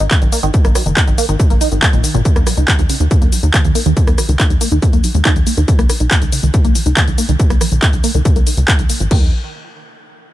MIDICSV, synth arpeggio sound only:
0, 0, Header, 1, 2, 480
1, 0, Start_track
1, 0, Tempo, 428571
1, 604, Time_signature, 4, 2, 24, 8
1, 11573, End_track
2, 0, Start_track
2, 0, Title_t, "Synth arpeggio sound"
2, 0, Program_c, 0, 84
2, 4, Note_on_c, 0, 63, 76
2, 85, Note_off_c, 0, 63, 0
2, 124, Note_on_c, 0, 51, 84
2, 205, Note_off_c, 0, 51, 0
2, 243, Note_on_c, 0, 51, 73
2, 357, Note_off_c, 0, 51, 0
2, 363, Note_on_c, 0, 58, 101
2, 445, Note_off_c, 0, 58, 0
2, 483, Note_on_c, 0, 51, 112
2, 565, Note_off_c, 0, 51, 0
2, 603, Note_on_c, 0, 49, 79
2, 685, Note_off_c, 0, 49, 0
2, 723, Note_on_c, 0, 58, 103
2, 837, Note_off_c, 0, 58, 0
2, 843, Note_on_c, 0, 54, 77
2, 925, Note_off_c, 0, 54, 0
2, 963, Note_on_c, 0, 51, 76
2, 1045, Note_off_c, 0, 51, 0
2, 1083, Note_on_c, 0, 63, 82
2, 1165, Note_off_c, 0, 63, 0
2, 1203, Note_on_c, 0, 51, 76
2, 1317, Note_off_c, 0, 51, 0
2, 1322, Note_on_c, 0, 58, 106
2, 1404, Note_off_c, 0, 58, 0
2, 1442, Note_on_c, 0, 51, 100
2, 1524, Note_off_c, 0, 51, 0
2, 1563, Note_on_c, 0, 49, 82
2, 1644, Note_off_c, 0, 49, 0
2, 1683, Note_on_c, 0, 58, 98
2, 1797, Note_off_c, 0, 58, 0
2, 1803, Note_on_c, 0, 63, 103
2, 1885, Note_off_c, 0, 63, 0
2, 1922, Note_on_c, 0, 51, 74
2, 2037, Note_off_c, 0, 51, 0
2, 2042, Note_on_c, 0, 56, 83
2, 2092, Note_off_c, 0, 56, 0
2, 2162, Note_on_c, 0, 46, 101
2, 2277, Note_off_c, 0, 46, 0
2, 2282, Note_on_c, 0, 51, 76
2, 2397, Note_off_c, 0, 51, 0
2, 2402, Note_on_c, 0, 46, 107
2, 2484, Note_off_c, 0, 46, 0
2, 2522, Note_on_c, 0, 51, 81
2, 2604, Note_off_c, 0, 51, 0
2, 2642, Note_on_c, 0, 58, 102
2, 2757, Note_off_c, 0, 58, 0
2, 2762, Note_on_c, 0, 54, 76
2, 2844, Note_off_c, 0, 54, 0
2, 2882, Note_on_c, 0, 63, 74
2, 2964, Note_off_c, 0, 63, 0
2, 3003, Note_on_c, 0, 51, 83
2, 3085, Note_off_c, 0, 51, 0
2, 3122, Note_on_c, 0, 51, 75
2, 3172, Note_off_c, 0, 51, 0
2, 3242, Note_on_c, 0, 49, 83
2, 3324, Note_off_c, 0, 49, 0
2, 3362, Note_on_c, 0, 51, 73
2, 3444, Note_off_c, 0, 51, 0
2, 3483, Note_on_c, 0, 49, 83
2, 3565, Note_off_c, 0, 49, 0
2, 3603, Note_on_c, 0, 58, 102
2, 3717, Note_off_c, 0, 58, 0
2, 3723, Note_on_c, 0, 54, 73
2, 3805, Note_off_c, 0, 54, 0
2, 3843, Note_on_c, 0, 63, 78
2, 3925, Note_off_c, 0, 63, 0
2, 3963, Note_on_c, 0, 51, 89
2, 4045, Note_off_c, 0, 51, 0
2, 4083, Note_on_c, 0, 51, 80
2, 4197, Note_off_c, 0, 51, 0
2, 4202, Note_on_c, 0, 58, 105
2, 4284, Note_off_c, 0, 58, 0
2, 4323, Note_on_c, 0, 51, 107
2, 4405, Note_off_c, 0, 51, 0
2, 4443, Note_on_c, 0, 49, 82
2, 4525, Note_off_c, 0, 49, 0
2, 4563, Note_on_c, 0, 58, 100
2, 4677, Note_off_c, 0, 58, 0
2, 4683, Note_on_c, 0, 54, 77
2, 4765, Note_off_c, 0, 54, 0
2, 4803, Note_on_c, 0, 51, 75
2, 4885, Note_off_c, 0, 51, 0
2, 4923, Note_on_c, 0, 63, 83
2, 5005, Note_off_c, 0, 63, 0
2, 5043, Note_on_c, 0, 51, 74
2, 5157, Note_off_c, 0, 51, 0
2, 5163, Note_on_c, 0, 58, 109
2, 5245, Note_off_c, 0, 58, 0
2, 5283, Note_on_c, 0, 51, 101
2, 5364, Note_off_c, 0, 51, 0
2, 5403, Note_on_c, 0, 49, 82
2, 5485, Note_off_c, 0, 49, 0
2, 5523, Note_on_c, 0, 58, 103
2, 5637, Note_off_c, 0, 58, 0
2, 5643, Note_on_c, 0, 54, 72
2, 5725, Note_off_c, 0, 54, 0
2, 5762, Note_on_c, 0, 56, 79
2, 5844, Note_off_c, 0, 56, 0
2, 5883, Note_on_c, 0, 63, 102
2, 5997, Note_off_c, 0, 63, 0
2, 6003, Note_on_c, 0, 51, 77
2, 6117, Note_off_c, 0, 51, 0
2, 6123, Note_on_c, 0, 58, 99
2, 6204, Note_off_c, 0, 58, 0
2, 6243, Note_on_c, 0, 51, 103
2, 6292, Note_off_c, 0, 51, 0
2, 6363, Note_on_c, 0, 51, 87
2, 6445, Note_off_c, 0, 51, 0
2, 6482, Note_on_c, 0, 58, 103
2, 6597, Note_off_c, 0, 58, 0
2, 6603, Note_on_c, 0, 53, 77
2, 6685, Note_off_c, 0, 53, 0
2, 6723, Note_on_c, 0, 63, 76
2, 6805, Note_off_c, 0, 63, 0
2, 6843, Note_on_c, 0, 51, 82
2, 6925, Note_off_c, 0, 51, 0
2, 6963, Note_on_c, 0, 51, 75
2, 7012, Note_off_c, 0, 51, 0
2, 7083, Note_on_c, 0, 49, 83
2, 7165, Note_off_c, 0, 49, 0
2, 7203, Note_on_c, 0, 51, 73
2, 7285, Note_off_c, 0, 51, 0
2, 7323, Note_on_c, 0, 49, 84
2, 7405, Note_off_c, 0, 49, 0
2, 7443, Note_on_c, 0, 58, 107
2, 7557, Note_off_c, 0, 58, 0
2, 7563, Note_on_c, 0, 53, 78
2, 7645, Note_off_c, 0, 53, 0
2, 7683, Note_on_c, 0, 63, 75
2, 7765, Note_off_c, 0, 63, 0
2, 7803, Note_on_c, 0, 51, 81
2, 7885, Note_off_c, 0, 51, 0
2, 7923, Note_on_c, 0, 51, 78
2, 8037, Note_off_c, 0, 51, 0
2, 8043, Note_on_c, 0, 58, 99
2, 8125, Note_off_c, 0, 58, 0
2, 8163, Note_on_c, 0, 51, 106
2, 8245, Note_off_c, 0, 51, 0
2, 8283, Note_on_c, 0, 49, 84
2, 8365, Note_off_c, 0, 49, 0
2, 8403, Note_on_c, 0, 58, 103
2, 8517, Note_off_c, 0, 58, 0
2, 8523, Note_on_c, 0, 53, 77
2, 8605, Note_off_c, 0, 53, 0
2, 8642, Note_on_c, 0, 51, 76
2, 8724, Note_off_c, 0, 51, 0
2, 8763, Note_on_c, 0, 63, 81
2, 8845, Note_off_c, 0, 63, 0
2, 8883, Note_on_c, 0, 51, 71
2, 8997, Note_off_c, 0, 51, 0
2, 9003, Note_on_c, 0, 58, 113
2, 9085, Note_off_c, 0, 58, 0
2, 9123, Note_on_c, 0, 51, 100
2, 9205, Note_off_c, 0, 51, 0
2, 9243, Note_on_c, 0, 49, 81
2, 9325, Note_off_c, 0, 49, 0
2, 9363, Note_on_c, 0, 58, 102
2, 9477, Note_off_c, 0, 58, 0
2, 9483, Note_on_c, 0, 63, 75
2, 9565, Note_off_c, 0, 63, 0
2, 9603, Note_on_c, 0, 49, 77
2, 9652, Note_off_c, 0, 49, 0
2, 9724, Note_on_c, 0, 51, 82
2, 9805, Note_off_c, 0, 51, 0
2, 9843, Note_on_c, 0, 51, 77
2, 9925, Note_off_c, 0, 51, 0
2, 9963, Note_on_c, 0, 58, 75
2, 10077, Note_off_c, 0, 58, 0
2, 10083, Note_on_c, 0, 53, 83
2, 10164, Note_off_c, 0, 53, 0
2, 10203, Note_on_c, 0, 51, 99
2, 10426, Note_off_c, 0, 51, 0
2, 11573, End_track
0, 0, End_of_file